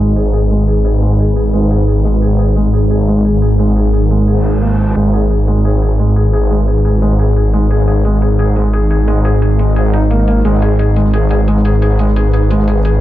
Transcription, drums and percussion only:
0.16 closed hi-hat medium
0.33 closed hi-hat medium
0.51 closed hi-hat medium
0.68 closed hi-hat medium
0.85 closed hi-hat medium
1.02 closed hi-hat medium
1.19 closed hi-hat medium
1.36 closed hi-hat medium
1.53 closed hi-hat medium
1.71 closed hi-hat medium
1.88 closed hi-hat medium
2.05 closed hi-hat medium
2.22 closed hi-hat medium
2.39 closed hi-hat medium
2.56 closed hi-hat medium
2.73 closed hi-hat medium
2.91 closed hi-hat medium
3.08 closed hi-hat medium
3.25 closed hi-hat medium
3.42 closed hi-hat medium
3.59 closed hi-hat medium
3.76 closed hi-hat medium
3.93 closed hi-hat medium
4.11 closed hi-hat medium
4.28 closed hi-hat medium
4.45 closed hi-hat medium
4.62 closed hi-hat medium
5.13 closed hi-hat medium
5.31 closed hi-hat medium
5.48 closed hi-hat medium
5.65 closed hi-hat medium
5.82 closed hi-hat medium
5.99 closed hi-hat medium
6.16 closed hi-hat medium
6.33 closed hi-hat medium
6.51 closed hi-hat medium
6.68 closed hi-hat medium
6.85 closed hi-hat medium
7.02 closed hi-hat medium
7.19 closed hi-hat medium
7.36 closed hi-hat medium
7.53 closed hi-hat medium
7.71 closed hi-hat medium
7.88 closed hi-hat medium
8.05 closed hi-hat medium
8.22 closed hi-hat medium
8.39 closed hi-hat medium
8.56 closed hi-hat medium
8.73 closed hi-hat medium
8.91 closed hi-hat medium
9.08 closed hi-hat medium
9.25 closed hi-hat medium
9.42 closed hi-hat medium
9.59 closed hi-hat medium
9.76 closed hi-hat medium
9.93 closed hi-hat medium
10.11 closed hi-hat medium
10.28 closed hi-hat medium
10.45 closed hi-hat medium
10.62 closed hi-hat medium
10.79 closed hi-hat medium
10.96 closed hi-hat medium
11.13 closed hi-hat medium
11.31 closed hi-hat medium
11.48 closed hi-hat medium
11.65 closed hi-hat medium
11.82 closed hi-hat medium
11.99 closed hi-hat medium
12.16 closed hi-hat medium
12.33 closed hi-hat medium
12.51 closed hi-hat medium
12.68 closed hi-hat medium
12.85 closed hi-hat medium

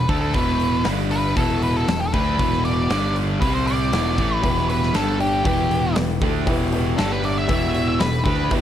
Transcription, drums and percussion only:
0.09 kick loud
0.09 open hi-hat medium
0.34 kick loud
0.34 open hi-hat medium
0.60 open hi-hat medium
0.85 snare loud
0.85 open hi-hat medium
1.11 open hi-hat medium
1.37 kick loud
1.37 open hi-hat medium
1.62 open hi-hat medium
1.88 snare loud
1.88 open hi-hat medium
2.14 kick loud
2.14 open hi-hat medium
2.39 kick loud
2.39 open hi-hat medium
2.53 snare soft
2.65 open hi-hat medium
2.90 snare loud
2.90 open hi-hat medium
3.16 open hi-hat medium
3.42 kick loud
3.42 open hi-hat medium
3.67 open hi-hat medium
3.93 snare loud
3.93 open hi-hat medium
4.18 kick loud
4.18 open hi-hat medium
4.44 kick loud
4.44 open hi-hat medium
4.58 snare soft
4.70 open hi-hat medium
4.83 snare soft
4.94 snare loud
4.94 open hi-hat medium
5.20 open hi-hat medium
5.45 kick loud
5.45 open hi-hat medium
5.71 open hi-hat medium
5.96 snare loud
5.96 open hi-hat medium
6.21 kick loud
6.21 open hi-hat medium
6.47 kick loud
6.47 open hi-hat medium
6.72 open hi-hat medium
6.98 snare loud
6.98 open hi-hat medium
7.24 open hi-hat medium
7.49 kick loud
7.49 open hi-hat medium
7.74 open hi-hat medium
8.00 snare loud
8.00 open hi-hat medium
8.26 kick loud
8.26 open hi-hat medium
8.51 kick loud
8.51 open hi-hat medium

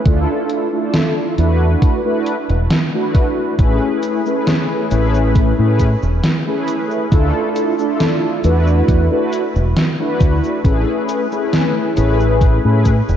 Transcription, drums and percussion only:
0.05 kick loud
0.05 closed hi-hat medium
0.49 closed hi-hat medium
0.94 snare loud
0.94 closed hi-hat medium
1.38 closed hi-hat medium
1.82 kick loud
1.82 closed hi-hat medium
2.26 closed hi-hat medium
2.49 closed hi-hat soft
2.70 snare loud
2.70 closed hi-hat medium
3.15 kick loud
3.15 closed hi-hat medium
3.59 kick loud
3.59 closed hi-hat medium
3.59 cabasa soft
4.03 closed hi-hat medium
4.03 cabasa medium
4.26 cabasa soft
4.47 snare loud
4.47 closed hi-hat medium
4.47 cabasa soft
4.91 closed hi-hat medium
4.91 cabasa medium
5.15 cabasa soft
5.35 kick loud
5.35 closed hi-hat medium
5.35 cabasa soft
5.79 kick medium
5.79 closed hi-hat medium
5.79 cabasa medium
6.03 cabasa soft
6.24 snare loud
6.24 closed hi-hat medium
6.24 cabasa soft
6.68 closed hi-hat medium
6.68 cabasa medium
6.91 cabasa soft
7.12 kick loud
7.12 closed hi-hat medium
7.12 cabasa soft
7.56 closed hi-hat medium
7.56 cabasa medium
7.79 cabasa soft
8.00 snare loud
8.00 closed hi-hat medium
8.00 cabasa soft
8.44 closed hi-hat medium
8.44 cabasa medium
8.67 cabasa soft
8.88 kick loud
8.88 closed hi-hat medium
8.88 cabasa soft
9.33 closed hi-hat medium
9.33 cabasa medium
9.56 cabasa soft
9.77 snare loud
9.77 closed hi-hat medium
9.77 cabasa soft
10.21 kick loud
10.21 closed hi-hat medium
10.21 cabasa medium
10.44 cabasa soft
10.65 kick loud
10.65 closed hi-hat medium
10.65 cabasa soft
11.09 closed hi-hat medium
11.09 cabasa medium
11.32 cabasa soft
11.53 snare loud
11.53 closed hi-hat medium
11.53 cabasa soft
11.97 closed hi-hat medium
11.97 cabasa medium
12.20 cabasa soft
12.41 kick loud
12.41 closed hi-hat medium
12.41 cabasa soft
12.85 kick medium
12.85 closed hi-hat medium
12.85 cabasa medium
13.09 cabasa soft

